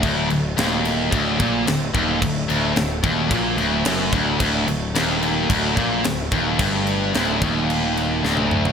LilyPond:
<<
  \new Staff \with { instrumentName = "Analog synth pad" } { \time 4/4 \tempo 4 = 110 <d fis a fis' a'>1~ | <d fis a fis' a'>1~ | <d fis a fis' a'>1~ | <d fis a fis' a'>1 | }
  \new Staff \with { instrumentName = "Distorted electric guitar" } { \clef bass \time 4/4 d,8 d,8 ees,4 d,8 bes,8 d,8 ees,8 | d,8 d,8 d,8 ees,8 bes,8 d,8 fis,8 d,8 | d,8 d,8 ees,4 d,8 bes,8 d,8 ees,8 | g,4 d,8 ees,4. d,4 | }
  \new Staff \with { instrumentName = "Distorted electric guitar" } { \clef bass \time 4/4 d,8 d,8 ees,4 d,8 bes,8 d,8 ees,8 | d,8 d,8 d,8 ees,8 bes,8 d,8 fis,8 d,8 | d,8 d,8 ees,4 d,8 bes,8 d,8 ees,8 | g,4 d,8 ees,4. d,4 | }
  \new Staff \with { instrumentName = "Picked electric bass" } { \clef bass \time 4/4 d,,8 d,,8 ees,,4 d,,8 bes,,8 d,,8 ees,,8 | d,,8 d,,8 d,,8 ees,,8 bes,,8 d,,8 fis,,8 d,,8 | d,,8 d,,8 ees,,4 d,,8 bes,,8 d,,8 ees,,8 | g,,4 d,,8 ees,,4. d,,4 | }
  \new DrumStaff \with { instrumentName = "Drums" } \drummode { \time 4/4 <cymc bd>8 cymc8 <cymc sn>8 cymc8 <cymc bd>8 <cymc bd>8 <cymc sn>8 <cymc bd>8 | <cymc bd>8 cymc8 <cymc sn>8 <cymc bd>8 <cymc bd>8 cymc8 <cymc sn>8 <cymc bd>8 | <cymc bd>8 cymc8 <cymc sn>8 cymc8 <cymc bd>8 <cymc bd>8 <cymc sn>8 <cymc bd>8 | <cymc bd>8 cymc8 <cymc sn>8 <cymc bd>8 cymc8 cymc8 sn16 tommh16 toml16 tomfh16 | }
>>